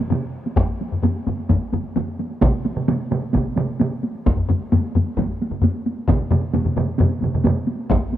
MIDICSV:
0, 0, Header, 1, 2, 480
1, 0, Start_track
1, 0, Tempo, 461538
1, 604, Time_signature, 4, 2, 24, 8
1, 3961, Tempo, 455235
1, 8565, End_track
2, 0, Start_track
2, 0, Title_t, "Taiko and cinematic ensemble drums"
2, 0, Note_on_c, 9, 48, 50
2, 100, Note_off_c, 9, 48, 0
2, 105, Note_on_c, 9, 45, 89
2, 111, Note_on_c, 9, 48, 56
2, 127, Note_on_c, 9, 47, 93
2, 209, Note_off_c, 9, 45, 0
2, 215, Note_off_c, 9, 48, 0
2, 231, Note_off_c, 9, 47, 0
2, 478, Note_on_c, 9, 48, 43
2, 582, Note_off_c, 9, 48, 0
2, 584, Note_on_c, 9, 45, 97
2, 592, Note_on_c, 9, 41, 105
2, 598, Note_on_c, 9, 48, 62
2, 688, Note_off_c, 9, 45, 0
2, 696, Note_off_c, 9, 41, 0
2, 702, Note_off_c, 9, 48, 0
2, 715, Note_on_c, 9, 48, 20
2, 819, Note_off_c, 9, 48, 0
2, 841, Note_on_c, 9, 48, 51
2, 945, Note_off_c, 9, 48, 0
2, 958, Note_on_c, 9, 45, 69
2, 972, Note_on_c, 9, 48, 18
2, 1062, Note_off_c, 9, 45, 0
2, 1075, Note_on_c, 9, 45, 101
2, 1076, Note_off_c, 9, 48, 0
2, 1081, Note_on_c, 9, 48, 67
2, 1179, Note_off_c, 9, 45, 0
2, 1185, Note_off_c, 9, 48, 0
2, 1205, Note_on_c, 9, 48, 19
2, 1309, Note_off_c, 9, 48, 0
2, 1316, Note_on_c, 9, 48, 50
2, 1320, Note_on_c, 9, 45, 90
2, 1420, Note_off_c, 9, 48, 0
2, 1424, Note_off_c, 9, 45, 0
2, 1442, Note_on_c, 9, 48, 21
2, 1546, Note_off_c, 9, 48, 0
2, 1553, Note_on_c, 9, 48, 64
2, 1554, Note_on_c, 9, 45, 91
2, 1559, Note_on_c, 9, 41, 77
2, 1657, Note_off_c, 9, 48, 0
2, 1658, Note_off_c, 9, 45, 0
2, 1663, Note_off_c, 9, 41, 0
2, 1793, Note_on_c, 9, 48, 50
2, 1805, Note_on_c, 9, 45, 93
2, 1897, Note_off_c, 9, 48, 0
2, 1909, Note_off_c, 9, 45, 0
2, 1915, Note_on_c, 9, 48, 22
2, 2019, Note_off_c, 9, 48, 0
2, 2037, Note_on_c, 9, 48, 65
2, 2045, Note_on_c, 9, 45, 94
2, 2141, Note_off_c, 9, 48, 0
2, 2149, Note_off_c, 9, 45, 0
2, 2161, Note_on_c, 9, 48, 21
2, 2265, Note_off_c, 9, 48, 0
2, 2281, Note_on_c, 9, 48, 53
2, 2385, Note_off_c, 9, 48, 0
2, 2395, Note_on_c, 9, 48, 23
2, 2499, Note_off_c, 9, 48, 0
2, 2515, Note_on_c, 9, 48, 70
2, 2521, Note_on_c, 9, 41, 103
2, 2523, Note_on_c, 9, 47, 95
2, 2619, Note_off_c, 9, 48, 0
2, 2625, Note_off_c, 9, 41, 0
2, 2627, Note_off_c, 9, 47, 0
2, 2635, Note_on_c, 9, 48, 21
2, 2739, Note_off_c, 9, 48, 0
2, 2753, Note_on_c, 9, 48, 53
2, 2857, Note_off_c, 9, 48, 0
2, 2878, Note_on_c, 9, 47, 65
2, 2882, Note_on_c, 9, 48, 20
2, 2982, Note_off_c, 9, 47, 0
2, 2986, Note_off_c, 9, 48, 0
2, 2997, Note_on_c, 9, 48, 79
2, 3002, Note_on_c, 9, 47, 87
2, 3101, Note_off_c, 9, 48, 0
2, 3106, Note_off_c, 9, 47, 0
2, 3125, Note_on_c, 9, 48, 21
2, 3229, Note_off_c, 9, 48, 0
2, 3235, Note_on_c, 9, 48, 53
2, 3243, Note_on_c, 9, 47, 90
2, 3339, Note_off_c, 9, 48, 0
2, 3347, Note_off_c, 9, 47, 0
2, 3355, Note_on_c, 9, 48, 21
2, 3459, Note_off_c, 9, 48, 0
2, 3473, Note_on_c, 9, 48, 69
2, 3479, Note_on_c, 9, 47, 89
2, 3485, Note_on_c, 9, 41, 70
2, 3577, Note_off_c, 9, 48, 0
2, 3583, Note_off_c, 9, 47, 0
2, 3589, Note_off_c, 9, 41, 0
2, 3708, Note_on_c, 9, 48, 53
2, 3718, Note_on_c, 9, 47, 96
2, 3812, Note_off_c, 9, 48, 0
2, 3822, Note_off_c, 9, 47, 0
2, 3832, Note_on_c, 9, 48, 22
2, 3936, Note_off_c, 9, 48, 0
2, 3949, Note_on_c, 9, 48, 66
2, 3964, Note_on_c, 9, 47, 94
2, 4054, Note_off_c, 9, 48, 0
2, 4070, Note_off_c, 9, 47, 0
2, 4082, Note_on_c, 9, 48, 22
2, 4187, Note_off_c, 9, 48, 0
2, 4195, Note_on_c, 9, 48, 54
2, 4301, Note_off_c, 9, 48, 0
2, 4322, Note_on_c, 9, 48, 22
2, 4427, Note_off_c, 9, 48, 0
2, 4438, Note_on_c, 9, 45, 69
2, 4439, Note_on_c, 9, 48, 69
2, 4442, Note_on_c, 9, 41, 99
2, 4543, Note_off_c, 9, 45, 0
2, 4545, Note_off_c, 9, 48, 0
2, 4548, Note_off_c, 9, 41, 0
2, 4560, Note_on_c, 9, 45, 65
2, 4568, Note_on_c, 9, 48, 21
2, 4665, Note_off_c, 9, 45, 0
2, 4674, Note_off_c, 9, 48, 0
2, 4676, Note_on_c, 9, 45, 98
2, 4687, Note_on_c, 9, 48, 53
2, 4781, Note_off_c, 9, 45, 0
2, 4792, Note_off_c, 9, 48, 0
2, 4804, Note_on_c, 9, 48, 21
2, 4909, Note_off_c, 9, 48, 0
2, 4923, Note_on_c, 9, 48, 74
2, 4925, Note_on_c, 9, 45, 102
2, 5029, Note_off_c, 9, 48, 0
2, 5031, Note_off_c, 9, 45, 0
2, 5051, Note_on_c, 9, 48, 21
2, 5156, Note_off_c, 9, 48, 0
2, 5165, Note_on_c, 9, 45, 94
2, 5181, Note_on_c, 9, 48, 53
2, 5270, Note_off_c, 9, 45, 0
2, 5286, Note_off_c, 9, 48, 0
2, 5300, Note_on_c, 9, 48, 21
2, 5398, Note_on_c, 9, 41, 70
2, 5400, Note_on_c, 9, 45, 92
2, 5406, Note_off_c, 9, 48, 0
2, 5416, Note_on_c, 9, 48, 70
2, 5503, Note_off_c, 9, 41, 0
2, 5506, Note_off_c, 9, 45, 0
2, 5522, Note_off_c, 9, 48, 0
2, 5662, Note_on_c, 9, 48, 53
2, 5761, Note_on_c, 9, 45, 66
2, 5767, Note_off_c, 9, 48, 0
2, 5784, Note_on_c, 9, 48, 21
2, 5866, Note_off_c, 9, 45, 0
2, 5866, Note_on_c, 9, 45, 89
2, 5889, Note_off_c, 9, 48, 0
2, 5889, Note_on_c, 9, 48, 69
2, 5972, Note_off_c, 9, 45, 0
2, 5995, Note_off_c, 9, 48, 0
2, 6017, Note_on_c, 9, 48, 23
2, 6122, Note_off_c, 9, 48, 0
2, 6125, Note_on_c, 9, 48, 53
2, 6231, Note_off_c, 9, 48, 0
2, 6257, Note_on_c, 9, 48, 23
2, 6353, Note_on_c, 9, 45, 96
2, 6361, Note_on_c, 9, 41, 94
2, 6362, Note_off_c, 9, 48, 0
2, 6368, Note_on_c, 9, 47, 101
2, 6373, Note_on_c, 9, 48, 66
2, 6458, Note_off_c, 9, 45, 0
2, 6466, Note_off_c, 9, 41, 0
2, 6473, Note_off_c, 9, 47, 0
2, 6478, Note_off_c, 9, 48, 0
2, 6499, Note_on_c, 9, 48, 20
2, 6594, Note_on_c, 9, 45, 96
2, 6603, Note_off_c, 9, 48, 0
2, 6603, Note_on_c, 9, 48, 56
2, 6605, Note_on_c, 9, 47, 98
2, 6699, Note_off_c, 9, 45, 0
2, 6709, Note_off_c, 9, 48, 0
2, 6711, Note_off_c, 9, 47, 0
2, 6720, Note_on_c, 9, 48, 22
2, 6826, Note_off_c, 9, 48, 0
2, 6840, Note_on_c, 9, 47, 62
2, 6843, Note_on_c, 9, 45, 71
2, 6847, Note_on_c, 9, 48, 76
2, 6946, Note_off_c, 9, 47, 0
2, 6948, Note_off_c, 9, 45, 0
2, 6952, Note_off_c, 9, 48, 0
2, 6958, Note_on_c, 9, 45, 67
2, 6965, Note_on_c, 9, 47, 59
2, 6969, Note_on_c, 9, 48, 22
2, 7063, Note_off_c, 9, 45, 0
2, 7070, Note_off_c, 9, 47, 0
2, 7075, Note_off_c, 9, 48, 0
2, 7075, Note_on_c, 9, 48, 50
2, 7080, Note_on_c, 9, 45, 88
2, 7090, Note_on_c, 9, 47, 88
2, 7181, Note_off_c, 9, 48, 0
2, 7186, Note_off_c, 9, 45, 0
2, 7193, Note_on_c, 9, 48, 24
2, 7195, Note_off_c, 9, 47, 0
2, 7298, Note_off_c, 9, 48, 0
2, 7314, Note_on_c, 9, 48, 74
2, 7325, Note_on_c, 9, 45, 92
2, 7335, Note_on_c, 9, 47, 89
2, 7419, Note_off_c, 9, 48, 0
2, 7428, Note_on_c, 9, 48, 48
2, 7431, Note_off_c, 9, 45, 0
2, 7441, Note_off_c, 9, 47, 0
2, 7534, Note_off_c, 9, 48, 0
2, 7546, Note_on_c, 9, 48, 48
2, 7559, Note_on_c, 9, 45, 64
2, 7578, Note_on_c, 9, 47, 72
2, 7651, Note_off_c, 9, 48, 0
2, 7664, Note_off_c, 9, 45, 0
2, 7667, Note_on_c, 9, 48, 21
2, 7684, Note_off_c, 9, 47, 0
2, 7687, Note_on_c, 9, 45, 68
2, 7693, Note_on_c, 9, 47, 66
2, 7773, Note_off_c, 9, 48, 0
2, 7790, Note_on_c, 9, 48, 64
2, 7793, Note_off_c, 9, 45, 0
2, 7798, Note_on_c, 9, 45, 92
2, 7799, Note_off_c, 9, 47, 0
2, 7820, Note_on_c, 9, 47, 91
2, 7895, Note_off_c, 9, 48, 0
2, 7903, Note_off_c, 9, 45, 0
2, 7918, Note_on_c, 9, 48, 22
2, 7925, Note_off_c, 9, 47, 0
2, 8023, Note_off_c, 9, 48, 0
2, 8032, Note_on_c, 9, 48, 54
2, 8137, Note_off_c, 9, 48, 0
2, 8155, Note_on_c, 9, 48, 22
2, 8260, Note_off_c, 9, 48, 0
2, 8274, Note_on_c, 9, 48, 66
2, 8281, Note_on_c, 9, 41, 104
2, 8282, Note_on_c, 9, 45, 96
2, 8379, Note_off_c, 9, 48, 0
2, 8386, Note_off_c, 9, 41, 0
2, 8387, Note_off_c, 9, 45, 0
2, 8395, Note_on_c, 9, 48, 22
2, 8501, Note_off_c, 9, 48, 0
2, 8513, Note_on_c, 9, 48, 48
2, 8565, Note_off_c, 9, 48, 0
2, 8565, End_track
0, 0, End_of_file